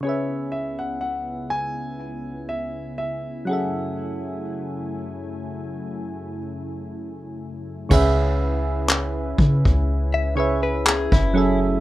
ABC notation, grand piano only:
X:1
M:4/4
L:1/16
Q:"Swing 16ths" 1/4=61
K:C#phr
V:1 name="Grand piano"
c2 e f f2 g4 e2 e2 f2- | f8- f2 z6 | z16 |]